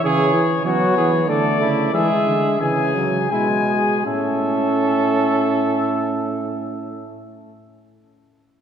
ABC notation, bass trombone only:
X:1
M:3/4
L:1/8
Q:1/4=79
K:A
V:1 name="Bass trombone" clef=bass
C, E, F, E, D, C, | E, D, C,2 B,,2 | A,,6- | A,,6 |]